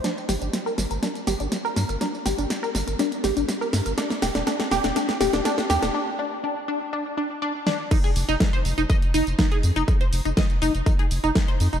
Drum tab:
CC |----------------|----------------|----------------|----------------|
HH |x-oxx-oxxxoxx-ox|x-oxx-oxxxoxx-ox|x-oxx-oxxxoxx-ox|----------------|
TB |xxxxxxxxxxxxxxxx|xxxxxxxxxxxxxxxx|xxxxxxxxxxxxxxxx|----------------|
SD |o-o-o-o-o-o-o-o-|o-o-o-o-o-o-o-o-|oooooooooooooooo|--------------o-|
BD |----------------|----------------|----------------|----------------|

CC |x---------------|----------------|
HH |xxoxxxoxxxoxxxox|xxoxxxoxxxoxxxox|
TB |xxxxxxxxxxxxxxxx|xxxxxxxxxxxxxxxx|
SD |----o-------o---|----o-------o---|
BD |o---o---o---o---|o---o---o---o---|